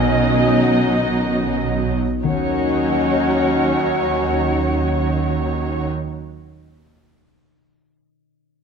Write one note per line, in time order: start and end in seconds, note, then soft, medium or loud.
0.00 1.95 B1 medium
0.00 1.95 B2 medium
0.00 2.27 B2 medium
0.00 1.80 D#3 medium
0.00 0.45 F#3 soft
0.00 1.95 F#3 medium
0.00 1.80 C#4 medium
0.00 0.88 C#4 soft
0.00 1.77 D#4 soft
0.00 1.95 D#4 medium
0.00 1.79 D#5 medium
0.00 1.99 D#5 medium
0.46 4.36 F#3 soft
0.89 2.28 C#4 soft
1.33 2.42 F#4 soft
1.78 2.36 D#4 soft
2.23 5.89 D#2 soft
2.23 6.13 D#3 soft
2.23 5.87 D#3 medium
2.23 5.89 D#3 soft
2.23 5.87 F#3 soft
2.23 5.88 F#3 medium
2.23 5.87 C#4 soft
2.23 5.89 C#4 medium
2.23 5.88 D#4 medium
2.23 5.87 C#5 medium
2.23 5.87 F#5 soft
2.30 5.94 C#4 soft
2.37 6.01 D#4 soft
2.44 6.07 F#4 soft
2.51 6.15 D#5 soft